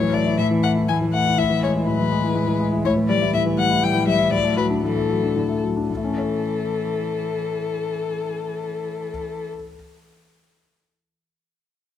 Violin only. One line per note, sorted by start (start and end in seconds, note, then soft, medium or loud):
0.00 0.15 C#5 medium
0.14 0.38 D5 medium
0.38 0.46 E5 medium
0.63 0.71 F#5 medium
0.88 0.96 G#5 medium
1.13 1.40 F#5 medium
1.38 1.62 E5 medium
1.63 1.71 C#5 medium
1.87 2.59 B4 soft
2.85 2.93 C#5 medium
3.09 3.33 D5 medium
3.34 3.42 E5 medium
3.59 3.85 F#5 medium
3.83 4.08 G5 medium
4.08 4.32 E5 medium
4.33 4.57 D5 medium
4.57 4.65 B4 medium
4.83 5.61 A4 soft
5.89 9.47 A4 soft